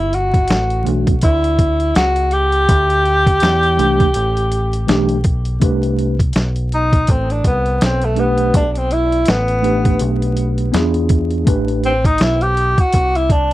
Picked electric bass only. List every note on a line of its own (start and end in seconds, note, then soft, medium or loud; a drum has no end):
0.00 0.46 G1 medium
0.50 0.84 A1 medium
0.86 1.21 B1 medium
1.23 1.92 D2 medium
1.96 2.65 C#2 loud
2.69 3.38 D2 loud
3.42 3.77 E2 medium
3.79 4.13 C2 medium
4.16 4.85 A1 medium
4.89 5.58 B1 loud
5.62 6.31 C2 loud
6.36 7.05 B1 medium
7.09 7.43 A1 loud
7.44 7.79 C2 medium
7.82 8.51 B1 loud
8.54 9.24 B1 loud
9.28 9.97 A1 medium
10.01 10.70 B1 loud
10.74 11.43 E2 medium
11.47 12.16 A1 loud
12.20 12.75 B1 medium
12.78 muted picked electric bass stroke soft
12.94 13.53 C2 medium